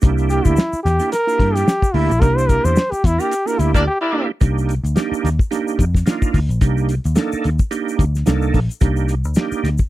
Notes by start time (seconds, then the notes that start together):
0.02 C2 A#3 D4 D#4 G4, kick, closed hi-hat, shaker
0.08 E4
0.18 closed hi-hat, shaker
0.30 G4, closed hi-hat, shaker
0.45 D2 E4, kick, closed hi-hat, shaker
0.56 snare, shaker
0.73 muted picked electric bass stroke, shaker
0.83 E2 G4, snare, closed hi-hat, shaker
0.99 A#3 D4 E4 G4, closed hi-hat, shaker
1.12 A#4, snare, closed hi-hat, shaker
1.27 A#3 D4 E4 F4, closed hi-hat, shaker
1.34 G4
1.39 G2, kick, closed hi-hat
1.55 G4, snare, closed hi-hat, shaker
1.68 snare, shaker
1.82 kick, closed hi-hat, shaker
1.94 D2 A#3 D4 E4 G4, open hi-hat
2.09 A#1, closed hi-hat, shaker
2.21 C2 A#3 D4 D#4 G4 A#4, kick, closed hi-hat, shaker
2.28 E4
2.37 C5, shaker
2.49 A#4, kick, closed hi-hat, shaker
2.64 E2 C5, closed hi-hat, shaker
2.76 snare, shaker
2.91 G4, muted picked electric bass stroke, closed hi-hat, shaker
3.04 E2 E4, kick, snare, closed hi-hat, shaker
3.18 A#3 D4 E4 G4 A#4, closed hi-hat, shaker
3.31 closed hi-hat, shaker
3.45 A#3 D4 E4 F#4 A#4, closed hi-hat, shaker
3.52 G4
3.59 D2 E4, closed hi-hat, shaker
3.74 A#3 D4 G4 D5, kick, snare, closed hi-hat, shaker
3.87 G4
4.01 A#3 D4 E4 G4 D5
4.13 A#3 D4 E4 G4
4.41 C2 A#3 D4 D#4 G4, kick, closed hi-hat, shaker
4.58 shaker
4.69 closed hi-hat, shaker
4.84 D2, closed hi-hat, shaker
4.95 A#3 D4 D#4 G4, snare, closed hi-hat, shaker
5.12 muted picked electric bass stroke, shaker
5.24 D#2, snare, closed hi-hat, shaker
5.39 kick, shaker
5.51 A#3 D4 D#4 G4, snare, closed hi-hat, shaker
5.68 shaker
5.79 F2, kick, closed hi-hat, shaker
5.95 kick, snare, shaker
6.06 A#3 D4 D#4 F4, snare, closed hi-hat, shaker
6.22 kick, shaker
6.34 D2, kick, open hi-hat, shaker
6.49 A#1, closed hi-hat, shaker
6.61 C2 A#3 D4 D#4 G4, kick, closed hi-hat, shaker
6.78 shaker
6.89 closed hi-hat, shaker
7.04 D#2, closed hi-hat, shaker
7.16 A#3 D4 D#4 A4, snare, closed hi-hat, shaker
7.32 muted picked electric bass stroke, shaker
7.44 D#2, closed hi-hat, shaker
7.59 kick, shaker
7.71 A#3 D4 D#4 G4, closed hi-hat, shaker
7.89 shaker
7.99 D2, kick, closed hi-hat, shaker
8.15 snare, shaker
8.26 C2 A#3 D4 D#4 A4, snare, closed hi-hat, shaker
8.42 shaker
8.54 A#1, kick, open hi-hat, shaker
8.69 closed hi-hat, shaker
8.81 C2 A#3 D4 D#4 G4, kick, closed hi-hat, shaker
8.96 shaker
9.08 closed hi-hat, shaker
9.24 D2, shaker
9.34 A#3 D4 D#4 G4, snare, closed hi-hat, shaker
9.52 muted picked electric bass stroke, shaker
9.64 D2, snare, closed hi-hat, shaker
9.78 kick, shaker